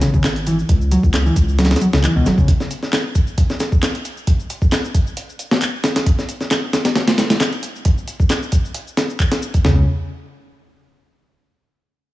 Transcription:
0.02 G#1 C#3, snare, closed hi-hat, shaker
0.14 C#3, kick, shaker
0.24 snare, clap, closed hi-hat, shaker
0.36 closed hi-hat
0.47 E3, closed hi-hat, shaker
0.59 shaker
0.69 C#2, kick, closed hi-hat, shaker
0.81 shaker
0.91 F#3, closed hi-hat, shaker
1.03 C#2, kick, shaker
1.14 snare, clap, closed hi-hat, shaker
1.26 E3, shaker
1.36 C#2, kick, closed hi-hat, shaker
1.49 shaker
1.59 F#3, snare, closed hi-hat, shaker
1.65 snare, closed hi-hat
1.71 snare, closed hi-hat, shaker
1.76 snare, closed hi-hat
1.81 F#3, closed hi-hat, shaker
1.93 C#2 C#3, snare, shaker
2.03 E3, clap, closed hi-hat, shaker
2.16 C#2 B2
2.26 G#1 F#3, snare, closed hi-hat, shaker
2.38 C#3, kick, shaker
2.48 kick, closed hi-hat, shaker
2.60 snare, shaker
2.71 closed hi-hat, shaker
2.83 snare, shaker
2.93 snare, clap, closed hi-hat, shaker
3.15 kick, closed hi-hat, shaker
3.27 shaker
3.38 kick, closed hi-hat, shaker
3.50 snare, shaker
3.60 snare, closed hi-hat, shaker
3.72 kick, shaker
3.83 snare, clap, closed hi-hat, shaker
3.95 closed hi-hat
4.05 closed hi-hat, shaker
4.17 shaker
4.27 kick, closed hi-hat, shaker
4.40 shaker
4.50 closed hi-hat, shaker
4.62 kick, shaker
4.72 snare, clap, closed hi-hat, shaker
4.85 shaker
4.94 kick, closed hi-hat, shaker
5.07 shaker
5.17 closed hi-hat, shaker
5.29 shaker
5.39 closed hi-hat, shaker
5.51 snare, shaker
5.62 clap, closed hi-hat, shaker
5.84 snare, closed hi-hat, shaker
5.96 snare, closed hi-hat, shaker
6.06 kick, closed hi-hat, shaker
6.19 snare, shaker
6.29 closed hi-hat, shaker
6.41 snare, shaker
6.51 snare, clap, closed hi-hat, shaker
6.73 snare, closed hi-hat, shaker
6.85 snare, closed hi-hat, shaker
6.96 snare, closed hi-hat, shaker
7.08 snare, closed hi-hat, shaker
7.18 snare, closed hi-hat, shaker
7.30 snare, closed hi-hat, shaker
7.40 snare, clap, closed hi-hat, shaker
7.53 closed hi-hat
7.63 closed hi-hat, shaker
7.76 shaker
7.85 kick, closed hi-hat, shaker
7.98 shaker
8.08 closed hi-hat, shaker
8.20 kick, shaker
8.30 snare, clap, closed hi-hat, shaker
8.43 shaker
8.52 kick, closed hi-hat, shaker
8.65 shaker
8.74 closed hi-hat, shaker
8.88 shaker
8.97 snare, closed hi-hat, shaker
9.10 shaker
9.20 kick, clap, closed hi-hat, shaker
9.32 snare, closed hi-hat, shaker
9.42 shaker
9.54 kick, closed hi-hat, shaker
9.65 C#2 C#3, snare, floor tom

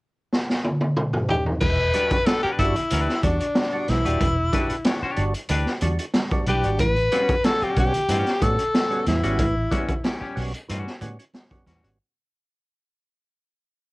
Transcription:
0.33 snare
0.50 snare
0.64 high tom
0.81 high tom
0.97 mid tom
1.13 mid tom
1.29 G4, floor tom
1.46 floor tom
1.61 E1 E3 B4, kick, crash, muted conga
1.93 G3 D4 F#4 G4 B4, closed hi-hat, muted conga
2.10 D4 F#4, muted fingered electric bass stroke, kick, closed hi-hat
2.26 D4 G4 A4 B4, snare, closed hi-hat, high conga
2.43 D4 G4 B4, muted fingered electric bass stroke
2.58 G1 G3 D4 E4 F#4, kick, closed hi-hat
2.76 closed hi-hat, low conga
2.90 D2 E3 D4 G4 B4, closed hi-hat, muted conga
3.09 snare
3.23 E2 G3 D4 F#4, kick, closed hi-hat, muted conga
3.40 D4 F#4, closed hi-hat
3.55 snare, closed hi-hat, high conga
3.73 G3 D4 F#4
3.88 B1 E3 E4, snare, closed hi-hat, high conga
4.05 D#1 G3 D4 F#4 G4 B4, closed hi-hat
4.20 E1 E3, kick, closed hi-hat, muted conga
4.52 G3 D4 F#4 G4 B4, kick, closed hi-hat, muted conga
4.69 D4 F#4, muted fingered electric bass stroke, closed hi-hat
4.84 D4 G4 C#5, snare, closed hi-hat, high conga
5.02 D4 G4 C#5, muted fingered electric bass stroke
5.16 G1 G3 D4 F#4, closed hi-hat
5.34 closed hi-hat
5.49 D2 E3 D4 G4 B4, closed hi-hat, muted conga
5.66 snare
5.81 E2 G3 D4 F#4, closed hi-hat, muted conga, low conga
5.98 D4 F#4, closed hi-hat
6.13 snare, closed hi-hat, high conga
6.30 G3 D4 F#4, kick, closed hi-hat
6.46 B1 E3 D4 G4 B4, closed hi-hat, high conga
6.63 G#1 G3 D4 F#4, closed hi-hat
6.78 A1 A2 E3 B4, kick, closed hi-hat, muted conga
6.96 closed hi-hat
7.11 G3 B3 C#4 F#4, closed hi-hat, muted conga
7.28 C#4 F#4, muted fingered electric bass stroke, kick, closed hi-hat
7.44 G3 C#4 F#4 A4, snare, closed hi-hat, high conga
7.61 G3 C#4 F#4 G4, muted fingered electric bass stroke, closed hi-hat
7.76 B1 G3 B3 C#4 F#4 G4, kick, closed hi-hat
7.94 closed hi-hat, low conga
8.09 G2 A2 E3 G3 C#4 F#4, closed hi-hat
8.26 snare, closed hi-hat
8.41 A2 G3 B3 C#4 F#4 A4, kick, closed hi-hat, muted conga
8.58 C#4 F#4, closed hi-hat
8.75 snare, closed hi-hat, high conga
8.90 G3 B3 C#4 F#4, closed hi-hat
9.06 E2 A2 E3 E4, snare, closed hi-hat, high conga
9.23 G#1 G3 B3 C#4 F#4, closed hi-hat
9.38 A1 A2 E3, kick, closed hi-hat, muted conga
9.71 G3 B3 C#4 F#4, kick, closed hi-hat, muted conga
9.88 C#4 F#4, muted fingered electric bass stroke, kick, closed hi-hat
10.04 G3 C#4 G4, snare, closed hi-hat, high conga
10.21 G3 C#4 G4, muted fingered electric bass stroke
10.35 B1 G3 B3 C#4 F#4, open hi-hat
10.54 closed hi-hat
10.69 G2 A2 E3 G3 C#4 F#4, closed hi-hat
10.87 snare
11.01 A2 G3 B3 C#4 F#4, closed hi-hat, muted conga, low conga
11.19 C#4 F#4, closed hi-hat
11.34 snare, closed hi-hat, high conga
11.50 G3 B3 C#4 F#4, kick, closed hi-hat
11.67 E2 A2 E3 G3 C#4 F#4, snare, closed hi-hat, high conga
11.84 G#1 G3 B3 C#4 F#4, closed hi-hat

